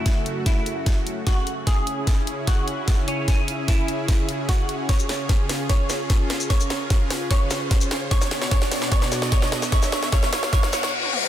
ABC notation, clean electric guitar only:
X:1
M:4/4
L:1/8
Q:1/4=149
K:C#phr
V:1 name="Clean electric guitar"
E2 E4 F z | G4 F3 C- | C2 E4 F z | c4 c4 |
c4 c4 | c2 c2 c2 c2 | c c c c c c z2 |]